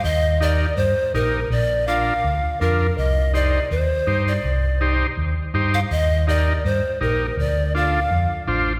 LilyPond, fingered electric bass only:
\new Staff \with { instrumentName = "Fingered electric bass" } { \clef bass \time 4/4 \key c \dorian \tempo 4 = 164 ees,2 g,8 r8 bes,,4 | bes,,2 d,8 r8 f,4 | c,2 ees,8 r8 g,4 | c,2 ees,8 r8 g,4 |
ees,2 g,8 r8 bes,,4 | d,2 f,8 r8 a,,4 | }